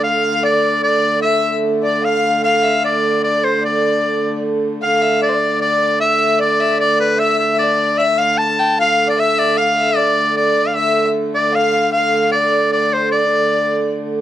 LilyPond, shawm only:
\new Staff \with { instrumentName = "Shawm" } { \time 3/4 \key d \minor \tempo 4 = 152 f''4 d''4 d''4 | e''8. r8. d''8 f''4 | f''4 d''4 d''8 c''8 | d''2 r4 |
f''4 d''4 d''4 | e''4 d''4 d''8 b'8 | e''8 e''8 d''4 e''8 f''8 | a''4 f''8. d''16 e''8 d''8 |
f''4 d''4 \tuplet 3/2 { d''4~ d''16 f''16 } | e''8. r8. d''8 f''4 | f''4 d''4 d''8 c''8 | d''2 r4 | }